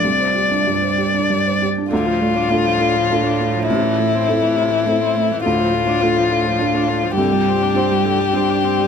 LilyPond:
<<
  \new Staff \with { instrumentName = "Ambient pad" } { \time 3/4 \key d \minor \tempo 4 = 102 << { <g' d''>2. | r2. | r2. | d''2.~ |
d''2. | } \\ { g2. | a2.~ | a2.~ | a2. |
r2. | } >> }
  \new Staff \with { instrumentName = "Violin" } { \time 3/4 \key d \minor d''2~ d''8 r8 | f'2. | e'2. | f'2. |
g'2. | }
  \new Staff \with { instrumentName = "Felt piano" } { \time 3/4 \key d \minor c,16 c''16 g'16 d'16 g,16 c''16 g'16 d'16 g,16 c''16 g'16 d'16 | d,4 <d' f' a'>4 <d' f' a'>4 | a,,4 <c' e' a'>4 <c' e' a'>4 | d,4 <d' f' a'>4 <d' f' a'>4 |
c,4 <d' g' c''>4 <d' g' c''>4 | }
  \new Staff \with { instrumentName = "Viola" } { \clef bass \time 3/4 \key d \minor r2. | d16 f16 a16 d'16 a16 f16 d16 f16 a16 d'16 a16 f16 | c16 e16 a16 c'16 a16 e16 c16 e16 a16 c'16 a16 e16 | d16 f16 a16 d'16 a16 f16 d16 f16 a16 d'16 a16 f16 |
d16 g16 c'16 d'16 c'16 g16 d16 g16 c'16 d'16 c'16 g16 | }
  \new Staff \with { instrumentName = "Cello" } { \clef bass \time 3/4 \key d \minor g2~ g8 r8 | a,2.~ | a,2. | a,2. |
g,2. | }
>>